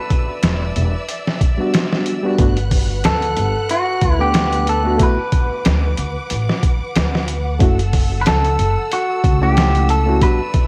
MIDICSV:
0, 0, Header, 1, 6, 480
1, 0, Start_track
1, 0, Tempo, 652174
1, 1756, Time_signature, 4, 2, 24, 8
1, 7855, End_track
2, 0, Start_track
2, 0, Title_t, "Violin section"
2, 0, Program_c, 0, 48
2, 0, Note_on_c, 0, 74, 78
2, 0, Note_on_c, 0, 76, 67
2, 0, Note_on_c, 0, 88, 86
2, 1727, Note_off_c, 0, 88, 0
2, 1735, Note_off_c, 0, 74, 0
2, 1735, Note_off_c, 0, 76, 0
2, 1753, Note_on_c, 0, 71, 77
2, 1754, Note_on_c, 0, 78, 75
2, 1757, Note_on_c, 0, 90, 89
2, 3656, Note_off_c, 0, 78, 0
2, 3657, Note_off_c, 0, 90, 0
2, 3671, Note_on_c, 0, 78, 70
2, 3672, Note_on_c, 0, 86, 90
2, 5565, Note_off_c, 0, 71, 0
2, 5575, Note_off_c, 0, 86, 0
2, 5594, Note_on_c, 0, 69, 76
2, 5596, Note_on_c, 0, 88, 83
2, 7484, Note_off_c, 0, 78, 0
2, 7496, Note_off_c, 0, 69, 0
2, 7519, Note_on_c, 0, 76, 73
2, 7521, Note_on_c, 0, 74, 74
2, 7855, Note_off_c, 0, 74, 0
2, 7855, Note_off_c, 0, 76, 0
2, 7855, Note_off_c, 0, 88, 0
2, 7855, End_track
3, 0, Start_track
3, 0, Title_t, "Clean electric guitar"
3, 0, Program_c, 1, 27
3, 0, Note_on_c, 1, 71, 108
3, 774, Note_off_c, 1, 71, 0
3, 2246, Note_on_c, 1, 69, 96
3, 2725, Note_off_c, 1, 69, 0
3, 2728, Note_on_c, 1, 66, 94
3, 3095, Note_off_c, 1, 66, 0
3, 3098, Note_on_c, 1, 67, 98
3, 3450, Note_off_c, 1, 67, 0
3, 3453, Note_on_c, 1, 69, 100
3, 3691, Note_off_c, 1, 69, 0
3, 3702, Note_on_c, 1, 71, 107
3, 4620, Note_off_c, 1, 71, 0
3, 6045, Note_on_c, 1, 71, 65
3, 6084, Note_off_c, 1, 71, 0
3, 6088, Note_on_c, 1, 69, 93
3, 6569, Note_off_c, 1, 69, 0
3, 6572, Note_on_c, 1, 66, 85
3, 6911, Note_off_c, 1, 66, 0
3, 6939, Note_on_c, 1, 67, 94
3, 7285, Note_off_c, 1, 67, 0
3, 7288, Note_on_c, 1, 69, 97
3, 7506, Note_off_c, 1, 69, 0
3, 7528, Note_on_c, 1, 71, 115
3, 7855, Note_off_c, 1, 71, 0
3, 7855, End_track
4, 0, Start_track
4, 0, Title_t, "Reed electric piano"
4, 0, Program_c, 2, 4
4, 1158, Note_on_c, 2, 55, 81
4, 1166, Note_on_c, 2, 59, 76
4, 1170, Note_on_c, 2, 62, 76
4, 1181, Note_on_c, 2, 66, 87
4, 1612, Note_off_c, 2, 55, 0
4, 1616, Note_off_c, 2, 59, 0
4, 1618, Note_off_c, 2, 62, 0
4, 1623, Note_off_c, 2, 66, 0
4, 1641, Note_on_c, 2, 55, 99
4, 1648, Note_on_c, 2, 59, 90
4, 1655, Note_on_c, 2, 62, 86
4, 1663, Note_on_c, 2, 66, 99
4, 1736, Note_off_c, 2, 55, 0
4, 1739, Note_off_c, 2, 59, 0
4, 1743, Note_off_c, 2, 62, 0
4, 1747, Note_off_c, 2, 66, 0
4, 1750, Note_on_c, 2, 57, 81
4, 1757, Note_on_c, 2, 59, 74
4, 1763, Note_on_c, 2, 62, 74
4, 1771, Note_on_c, 2, 66, 90
4, 1882, Note_off_c, 2, 57, 0
4, 1885, Note_off_c, 2, 59, 0
4, 1889, Note_off_c, 2, 62, 0
4, 1892, Note_off_c, 2, 66, 0
4, 3081, Note_on_c, 2, 57, 81
4, 3086, Note_on_c, 2, 59, 71
4, 3095, Note_on_c, 2, 62, 73
4, 3101, Note_on_c, 2, 78, 87
4, 3533, Note_off_c, 2, 57, 0
4, 3535, Note_off_c, 2, 59, 0
4, 3540, Note_off_c, 2, 62, 0
4, 3543, Note_off_c, 2, 78, 0
4, 3560, Note_on_c, 2, 57, 95
4, 3568, Note_on_c, 2, 59, 86
4, 3575, Note_on_c, 2, 62, 83
4, 3582, Note_on_c, 2, 66, 105
4, 3655, Note_off_c, 2, 57, 0
4, 3659, Note_off_c, 2, 59, 0
4, 3663, Note_off_c, 2, 62, 0
4, 3665, Note_on_c, 2, 57, 81
4, 3666, Note_off_c, 2, 66, 0
4, 3672, Note_on_c, 2, 59, 74
4, 3681, Note_on_c, 2, 64, 76
4, 3688, Note_on_c, 2, 66, 90
4, 3799, Note_off_c, 2, 57, 0
4, 3803, Note_off_c, 2, 59, 0
4, 3808, Note_off_c, 2, 64, 0
4, 3811, Note_off_c, 2, 66, 0
4, 5589, Note_on_c, 2, 57, 83
4, 5593, Note_on_c, 2, 61, 70
4, 5604, Note_on_c, 2, 64, 74
4, 5611, Note_on_c, 2, 66, 92
4, 5721, Note_off_c, 2, 57, 0
4, 5724, Note_off_c, 2, 61, 0
4, 5729, Note_off_c, 2, 64, 0
4, 5732, Note_off_c, 2, 66, 0
4, 6928, Note_on_c, 2, 57, 80
4, 6932, Note_on_c, 2, 61, 77
4, 6939, Note_on_c, 2, 64, 74
4, 6948, Note_on_c, 2, 78, 92
4, 7377, Note_off_c, 2, 57, 0
4, 7379, Note_off_c, 2, 61, 0
4, 7382, Note_off_c, 2, 64, 0
4, 7387, Note_off_c, 2, 78, 0
4, 7404, Note_on_c, 2, 57, 92
4, 7411, Note_on_c, 2, 61, 85
4, 7420, Note_on_c, 2, 64, 90
4, 7426, Note_on_c, 2, 66, 102
4, 7497, Note_off_c, 2, 57, 0
4, 7501, Note_off_c, 2, 61, 0
4, 7505, Note_off_c, 2, 64, 0
4, 7508, Note_off_c, 2, 66, 0
4, 7513, Note_on_c, 2, 55, 83
4, 7517, Note_on_c, 2, 59, 74
4, 7526, Note_on_c, 2, 62, 74
4, 7532, Note_on_c, 2, 66, 89
4, 7644, Note_off_c, 2, 55, 0
4, 7646, Note_off_c, 2, 59, 0
4, 7650, Note_off_c, 2, 62, 0
4, 7653, Note_off_c, 2, 66, 0
4, 7855, End_track
5, 0, Start_track
5, 0, Title_t, "Upright bass"
5, 0, Program_c, 3, 32
5, 319, Note_on_c, 3, 28, 90
5, 532, Note_off_c, 3, 28, 0
5, 562, Note_on_c, 3, 28, 107
5, 677, Note_off_c, 3, 28, 0
5, 1757, Note_on_c, 3, 31, 98
5, 2216, Note_off_c, 3, 31, 0
5, 2240, Note_on_c, 3, 38, 93
5, 2452, Note_off_c, 3, 38, 0
5, 2480, Note_on_c, 3, 31, 101
5, 2595, Note_off_c, 3, 31, 0
5, 2959, Note_on_c, 3, 38, 92
5, 3657, Note_off_c, 3, 38, 0
5, 4163, Note_on_c, 3, 38, 92
5, 4374, Note_off_c, 3, 38, 0
5, 4403, Note_on_c, 3, 38, 102
5, 4517, Note_off_c, 3, 38, 0
5, 4644, Note_on_c, 3, 33, 86
5, 4757, Note_off_c, 3, 33, 0
5, 5122, Note_on_c, 3, 38, 99
5, 5579, Note_off_c, 3, 38, 0
5, 5601, Note_on_c, 3, 30, 99
5, 6058, Note_off_c, 3, 30, 0
5, 6081, Note_on_c, 3, 37, 90
5, 6293, Note_off_c, 3, 37, 0
5, 6323, Note_on_c, 3, 30, 96
5, 6437, Note_off_c, 3, 30, 0
5, 6804, Note_on_c, 3, 37, 95
5, 7499, Note_off_c, 3, 37, 0
5, 7855, End_track
6, 0, Start_track
6, 0, Title_t, "Drums"
6, 77, Note_on_c, 9, 36, 85
6, 77, Note_on_c, 9, 42, 62
6, 150, Note_off_c, 9, 36, 0
6, 151, Note_off_c, 9, 42, 0
6, 314, Note_on_c, 9, 42, 83
6, 321, Note_on_c, 9, 38, 113
6, 388, Note_off_c, 9, 42, 0
6, 394, Note_off_c, 9, 38, 0
6, 559, Note_on_c, 9, 42, 63
6, 632, Note_off_c, 9, 42, 0
6, 799, Note_on_c, 9, 42, 86
6, 872, Note_off_c, 9, 42, 0
6, 938, Note_on_c, 9, 38, 52
6, 1011, Note_off_c, 9, 38, 0
6, 1036, Note_on_c, 9, 36, 97
6, 1039, Note_on_c, 9, 42, 63
6, 1110, Note_off_c, 9, 36, 0
6, 1112, Note_off_c, 9, 42, 0
6, 1278, Note_on_c, 9, 42, 88
6, 1285, Note_on_c, 9, 38, 112
6, 1352, Note_off_c, 9, 42, 0
6, 1358, Note_off_c, 9, 38, 0
6, 1417, Note_on_c, 9, 38, 57
6, 1491, Note_off_c, 9, 38, 0
6, 1515, Note_on_c, 9, 42, 72
6, 1589, Note_off_c, 9, 42, 0
6, 1755, Note_on_c, 9, 42, 83
6, 1756, Note_on_c, 9, 36, 103
6, 1829, Note_off_c, 9, 36, 0
6, 1829, Note_off_c, 9, 42, 0
6, 1890, Note_on_c, 9, 42, 42
6, 1964, Note_off_c, 9, 42, 0
6, 1997, Note_on_c, 9, 36, 89
6, 1997, Note_on_c, 9, 46, 79
6, 2070, Note_off_c, 9, 36, 0
6, 2070, Note_off_c, 9, 46, 0
6, 2237, Note_on_c, 9, 42, 81
6, 2244, Note_on_c, 9, 38, 117
6, 2311, Note_off_c, 9, 42, 0
6, 2317, Note_off_c, 9, 38, 0
6, 2371, Note_on_c, 9, 42, 45
6, 2445, Note_off_c, 9, 42, 0
6, 2477, Note_on_c, 9, 42, 67
6, 2551, Note_off_c, 9, 42, 0
6, 2719, Note_on_c, 9, 42, 83
6, 2792, Note_off_c, 9, 42, 0
6, 2954, Note_on_c, 9, 42, 71
6, 2956, Note_on_c, 9, 36, 92
6, 3028, Note_off_c, 9, 42, 0
6, 3030, Note_off_c, 9, 36, 0
6, 3194, Note_on_c, 9, 42, 85
6, 3200, Note_on_c, 9, 38, 106
6, 3267, Note_off_c, 9, 42, 0
6, 3274, Note_off_c, 9, 38, 0
6, 3330, Note_on_c, 9, 42, 46
6, 3404, Note_off_c, 9, 42, 0
6, 3438, Note_on_c, 9, 42, 68
6, 3511, Note_off_c, 9, 42, 0
6, 3675, Note_on_c, 9, 42, 83
6, 3677, Note_on_c, 9, 36, 107
6, 3749, Note_off_c, 9, 42, 0
6, 3750, Note_off_c, 9, 36, 0
6, 3916, Note_on_c, 9, 42, 65
6, 3918, Note_on_c, 9, 36, 87
6, 3990, Note_off_c, 9, 42, 0
6, 3991, Note_off_c, 9, 36, 0
6, 4158, Note_on_c, 9, 42, 88
6, 4165, Note_on_c, 9, 38, 106
6, 4232, Note_off_c, 9, 42, 0
6, 4239, Note_off_c, 9, 38, 0
6, 4397, Note_on_c, 9, 42, 66
6, 4471, Note_off_c, 9, 42, 0
6, 4637, Note_on_c, 9, 42, 88
6, 4710, Note_off_c, 9, 42, 0
6, 4779, Note_on_c, 9, 38, 53
6, 4853, Note_off_c, 9, 38, 0
6, 4878, Note_on_c, 9, 36, 89
6, 4879, Note_on_c, 9, 42, 67
6, 4952, Note_off_c, 9, 36, 0
6, 4953, Note_off_c, 9, 42, 0
6, 5119, Note_on_c, 9, 42, 86
6, 5125, Note_on_c, 9, 38, 112
6, 5192, Note_off_c, 9, 42, 0
6, 5199, Note_off_c, 9, 38, 0
6, 5262, Note_on_c, 9, 38, 53
6, 5336, Note_off_c, 9, 38, 0
6, 5357, Note_on_c, 9, 42, 65
6, 5431, Note_off_c, 9, 42, 0
6, 5597, Note_on_c, 9, 42, 79
6, 5598, Note_on_c, 9, 36, 105
6, 5670, Note_off_c, 9, 42, 0
6, 5672, Note_off_c, 9, 36, 0
6, 5736, Note_on_c, 9, 42, 47
6, 5809, Note_off_c, 9, 42, 0
6, 5838, Note_on_c, 9, 46, 77
6, 5839, Note_on_c, 9, 36, 86
6, 5912, Note_off_c, 9, 46, 0
6, 5913, Note_off_c, 9, 36, 0
6, 6079, Note_on_c, 9, 42, 89
6, 6085, Note_on_c, 9, 38, 122
6, 6152, Note_off_c, 9, 42, 0
6, 6159, Note_off_c, 9, 38, 0
6, 6216, Note_on_c, 9, 42, 42
6, 6289, Note_off_c, 9, 42, 0
6, 6322, Note_on_c, 9, 42, 64
6, 6396, Note_off_c, 9, 42, 0
6, 6562, Note_on_c, 9, 42, 91
6, 6636, Note_off_c, 9, 42, 0
6, 6800, Note_on_c, 9, 36, 97
6, 6802, Note_on_c, 9, 42, 66
6, 6874, Note_off_c, 9, 36, 0
6, 6876, Note_off_c, 9, 42, 0
6, 7043, Note_on_c, 9, 42, 87
6, 7049, Note_on_c, 9, 38, 115
6, 7116, Note_off_c, 9, 42, 0
6, 7123, Note_off_c, 9, 38, 0
6, 7175, Note_on_c, 9, 42, 46
6, 7249, Note_off_c, 9, 42, 0
6, 7279, Note_on_c, 9, 42, 69
6, 7353, Note_off_c, 9, 42, 0
6, 7518, Note_on_c, 9, 42, 87
6, 7519, Note_on_c, 9, 36, 105
6, 7591, Note_off_c, 9, 42, 0
6, 7593, Note_off_c, 9, 36, 0
6, 7755, Note_on_c, 9, 42, 59
6, 7758, Note_on_c, 9, 36, 91
6, 7829, Note_off_c, 9, 42, 0
6, 7831, Note_off_c, 9, 36, 0
6, 7855, End_track
0, 0, End_of_file